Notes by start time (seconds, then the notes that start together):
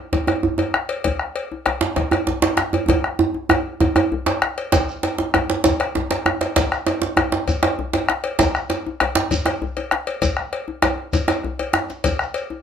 0.13 bombo low, cowbell, djembe slap, djembe tone
0.27 bombo rim, cowbell, djembe tone
0.43 djembe slap, djembe tone, djembe bass
0.58 cowbell, djembe tone
0.74 bombo rim, djembe slap
0.89 cowbell, djembe slap
1.04 bombo rim, bombo low, cowbell, djembe tone, djembe bass
1.19 bombo rim
1.36 cowbell
1.52 djembe tone
1.66 bombo rim, cowbell, djembe slap, djembe bass
1.81 bombo rim, djembe slap
1.96 bombo low, cowbell, djembe slap, djembe tone
2.11 bombo rim, cowbell, djembe tone
2.27 djembe slap, djembe bass
2.42 cowbell, djembe slap, djembe tone
2.57 bombo rim, djembe slap
2.73 cowbell, djembe tone
2.88 bombo low, cowbell, djembe tone, djembe bass
3.04 bombo rim
3.19 bombo rim, djembe tone
3.34 djembe tone
3.49 bombo rim, cowbell, djembe slap, djembe tone, djembe bass
3.66 djembe slap
3.80 bombo low, cowbell, djembe tone
3.96 bombo rim, cowbell, djembe tone
4.12 djembe bass
4.26 cowbell, djembe slap, djembe tone
4.42 bombo rim, djembe slap
4.58 bombo rim, cowbell
4.72 bombo rim, bombo low, cowbell, djembe slap, djembe tone, djembe bass, shekere
4.88 shekere
5.03 cowbell, djembe slap, shekere
5.18 djembe slap, djembe tone
5.34 bombo rim, cowbell, djembe slap, djembe tone, djembe bass
5.49 bombo rim, djembe slap
5.64 bombo low, cowbell, djembe slap, djembe tone, shekere
5.80 bombo rim, cowbell, djembe slap
5.95 djembe slap, djembe bass
6.11 cowbell, djembe slap, djembe tone
6.26 bombo rim, djembe slap, djembe tone
6.41 cowbell, djembe slap
6.56 bombo rim, bombo low, cowbell, djembe slap, djembe tone, djembe bass, shekere
6.72 bombo rim, shekere
6.87 cowbell, djembe slap, shekere
7.02 djembe slap, djembe tone
7.17 bombo rim, cowbell, djembe slap, djembe tone, djembe bass
7.32 bombo rim, djembe slap
7.48 bombo low, cowbell, djembe slap, djembe tone, shekere
7.63 bombo rim, cowbell, djembe slap
7.79 djembe slap, djembe bass
7.93 cowbell, djembe slap, djembe tone
8.09 bombo rim, djembe slap
8.24 cowbell, djembe slap
8.39 bombo low, cowbell, djembe slap, djembe tone, djembe bass, shekere
8.55 bombo rim, shekere
8.70 cowbell, djembe slap, shekere
8.86 djembe tone
9.00 bombo rim, cowbell, djembe slap, djembe bass
9.15 djembe slap
9.31 bombo low, cowbell, djembe slap, djembe tone, shekere
9.45 bombo rim, cowbell, djembe slap
9.62 djembe slap, djembe bass
9.77 cowbell, djembe tone
9.91 bombo rim, djembe slap
10.07 cowbell, djembe slap
10.22 bombo low, cowbell, djembe tone, djembe bass, shekere
10.37 bombo rim
10.53 bombo rim, cowbell
10.68 djembe tone
10.82 bombo rim, cowbell, djembe slap, djembe bass
10.98 bombo rim, djembe slap
11.13 bombo low, cowbell, djembe tone, shekere
11.28 bombo rim, cowbell, djembe slap, shekere
11.43 bombo rim, djembe slap, djembe bass
11.59 cowbell, djembe bass
11.73 bombo rim, djembe slap
11.89 djembe slap, shekere
12.04 bombo rim, bombo low, cowbell, djembe tone, djembe bass, shekere
12.19 bombo rim, shekere
12.34 cowbell, shekere
12.50 djembe tone